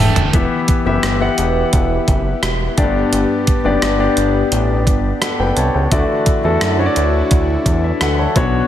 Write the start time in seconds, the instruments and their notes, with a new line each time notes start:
Already playing: analog synth pad E3 A3 D4, overdriven electric guitar A3, grand piano D4 E4 A4 E5 G5
0.00 analog synth bass E1, overdriven electric guitar E3, grand piano A5
0.16 analog synth bass D#1, closed hi-hat, floor tom
0.33 analog synth bass E1, analog synth pad E3 E4 G4 B4, grand piano E3 B3 E4 G4 E5, kick, closed hi-hat
0.68 kick, closed hi-hat
0.85 analog synth bass F#1, grand piano B3 E4 G4 E5
1.03 analog synth bass G1, cross-stick, closed hi-hat
1.20 grand piano B3 E4 G4 F#5
1.38 analog synth bass E1, closed hi-hat
1.73 analog synth bass E1, kick, closed hi-hat
2.08 analog synth bass F#1, kick, closed hi-hat
2.43 analog synth bass E1, cross-stick, closed hi-hat
2.77 analog synth bass G1, grand piano G2 A3 D4 G4 D5, analog synth pad B3 D4, kick, closed hi-hat
2.83 grand piano B3
3.12 analog synth bass G1, closed hi-hat
3.47 kick, closed hi-hat
3.64 analog synth bass F#1, grand piano B3 D4 G4 D5
3.82 analog synth bass G1, cross-stick, closed hi-hat
3.99 grand piano B3 D4 G4 D5
4.17 analog synth bass G1, closed hi-hat
4.52 analog synth bass A1, closed hi-hat
4.87 analog synth bass G1, kick, closed hi-hat
5.22 grand piano A4 F#5, cross-stick, closed hi-hat
5.39 analog synth bass F#1, grand piano B4 G5
5.57 analog synth bass C2, grand piano C#5 A5, closed hi-hat
5.74 analog synth bass C#2, grand piano B4 G5
5.91 analog synth bass D2, grand piano D3 A3 E4 F#4 D5, analog synth pad E3 E4 F#4, kick, closed hi-hat
6.26 kick, closed hi-hat
6.44 analog synth bass E2, grand piano A3 E4 F#4 A4
6.61 analog synth bass F#2, cross-stick, closed hi-hat
6.78 grand piano A3 E4 F#4 C#5
6.86 grand piano D5
6.96 analog synth bass D2, closed hi-hat
7.31 analog synth bass D2, kick, closed hi-hat
7.66 analog synth bass E2, kick, closed hi-hat
7.84 grand piano E5
8.01 analog synth bass D2, grand piano A4 F#5, cross-stick, closed hi-hat
8.19 grand piano C#5 A5
8.35 analog synth bass B1, grand piano B2 B3 D4 F#4 C#5, analog synth pad B3 C#5, kick, closed hi-hat